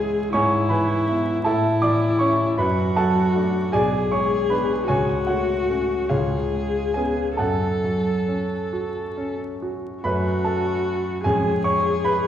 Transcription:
Already playing: grand piano C#2 E3 G#3 C#4 E4 F#4 C#5 E5 F#5, viola G#4
0.33 grand piano G#2 C#5 G#5 C#6, viola E4
0.69 grand piano E3 B4 G#5 B5
1.08 grand piano B3 E4
1.44 grand piano A2 A4 E5 A5, viola E4
1.82 grand piano E3 D5 D6
2.19 grand piano C#4 E4 C#5 C#6
2.58 grand piano F#2 B4 B5, viola F#4
2.96 grand piano F#3 A4 F#5 A5
3.36 grand piano A3 D4
3.72 grand piano B1 G#4 D5 G#5, viola G#4
4.12 grand piano G#3 C#5 C#6
4.50 grand piano B3 D4 B4 B5
4.88 grand piano C#2 G#4 C#5 G#5, viola F#4
5.27 grand piano A3 F#4 C#5 F#5
5.69 grand piano A3 C#4
6.09 grand piano C#2 F4 C#5 F5, viola G#4
6.52 grand piano G#3
6.94 grand piano B3 C#4 G#4 G#5
7.37 grand piano F#2 A4 F#5 A5, viola A4
7.84 grand piano F#3
8.28 grand piano C#4
8.73 grand piano F#4
9.17 grand piano C#4
9.62 grand piano F#4
10.04 grand piano F#2 F#3 A3 C#4 B4 B5, viola F#4
10.44 grand piano A4 A5
11.24 grand piano F2 G#3 C#4 G#4 G#5, viola G#4
11.64 grand piano C#5 C#6
12.04 grand piano B4 B5

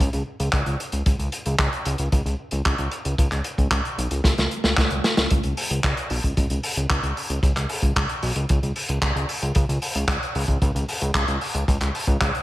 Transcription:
0.00 kick, closed hi-hat
0.13 analog synth bass C#2, closed hi-hat
0.40 analog synth bass C#2, closed hi-hat
0.53 analog synth bass C#2, kick, clap, closed hi-hat
0.66 analog synth bass C#2, closed hi-hat
0.80 closed hi-hat
0.92 analog synth bass C#2, closed hi-hat
1.06 analog synth bass C#2, kick, closed hi-hat
1.19 analog synth bass C#2, closed hi-hat
1.32 closed hi-hat
1.46 analog synth bass C#2, closed hi-hat
1.59 analog synth bass C#2, kick, clap, closed hi-hat
1.73 closed hi-hat
1.85 analog synth bass C#2, closed hi-hat
1.98 analog synth bass C#2, closed hi-hat
2.12 analog synth bass C#2, kick, closed hi-hat
2.26 analog synth bass C#2, closed hi-hat
2.51 analog synth bass C#2, closed hi-hat
2.65 analog synth bass C#2, kick, clap, closed hi-hat
2.78 analog synth bass C#2, closed hi-hat
2.91 closed hi-hat
3.05 analog synth bass C#2, closed hi-hat
3.18 analog synth bass C#2, kick, closed hi-hat
3.31 analog synth bass C#2, clap, closed hi-hat
3.44 closed hi-hat
3.58 analog synth bass C#2, kick, closed hi-hat
3.71 analog synth bass C#2, kick, clap, closed hi-hat
3.85 closed hi-hat
3.98 analog synth bass B1, closed hi-hat
4.11 analog synth bass C#2, closed hi-hat
4.24 analog synth bass C#2, kick, snare, closed hi-hat
4.38 analog synth bass C#2, snare, closed hi-hat
4.51 closed hi-hat
4.64 analog synth bass C#2, snare, closed hi-hat
4.77 analog synth bass C#2, kick, snare, clap, closed hi-hat
4.90 analog synth bass C#2, closed hi-hat
5.04 snare, closed hi-hat
5.17 analog synth bass C#2, snare, closed hi-hat
5.30 analog synth bass C#2, kick, closed hi-hat
5.43 analog synth bass C#2, closed hi-hat
5.57 open hi-hat
5.70 analog synth bass C#2, closed hi-hat
5.84 analog synth bass C#2, kick, clap, closed hi-hat
5.97 closed hi-hat
6.10 analog synth bass B1, open hi-hat
6.24 analog synth bass C#2, kick, closed hi-hat
6.37 analog synth bass C#2, kick, closed hi-hat
6.50 analog synth bass C#2, closed hi-hat
6.63 open hi-hat
6.76 analog synth bass C#2, closed hi-hat
6.90 analog synth bass C#2, kick, clap, closed hi-hat
7.03 analog synth bass C#2, closed hi-hat
7.17 open hi-hat
7.30 analog synth bass C#2, closed hi-hat
7.43 analog synth bass C#2, kick, closed hi-hat
7.56 analog synth bass C#2, clap, closed hi-hat
7.69 open hi-hat
7.82 analog synth bass C#2, kick, closed hi-hat
7.96 analog synth bass C#2, kick, clap, closed hi-hat
8.09 closed hi-hat
8.23 analog synth bass B1, open hi-hat
8.36 analog synth bass C#2, closed hi-hat
8.49 analog synth bass C#2, kick, closed hi-hat
8.63 analog synth bass C#2, closed hi-hat
8.76 open hi-hat
8.89 analog synth bass C#2, closed hi-hat
9.02 analog synth bass C#2, kick, clap, closed hi-hat
9.16 analog synth bass C#2, closed hi-hat
9.29 open hi-hat
9.42 analog synth bass C#2, closed hi-hat
9.55 analog synth bass C#2, kick, closed hi-hat
9.69 analog synth bass C#2, closed hi-hat
9.82 open hi-hat
9.95 analog synth bass C#2, closed hi-hat
10.08 analog synth bass C#2, kick, clap, closed hi-hat
10.23 closed hi-hat
10.35 analog synth bass C#2, open hi-hat
10.48 analog synth bass C#2, kick, closed hi-hat
10.62 analog synth bass C#2, kick, closed hi-hat
10.75 analog synth bass C#2, closed hi-hat
10.89 open hi-hat
11.01 analog synth bass C#2, closed hi-hat
11.14 analog synth bass C#2, kick, clap, closed hi-hat
11.28 analog synth bass C#2, closed hi-hat
11.41 open hi-hat
11.55 analog synth bass C#2, closed hi-hat
11.68 analog synth bass C#2, kick, closed hi-hat
11.81 analog synth bass C#2, clap, closed hi-hat
11.95 open hi-hat
12.07 analog synth bass C#2, kick
12.21 analog synth bass C#2, kick, clap, closed hi-hat
12.35 closed hi-hat

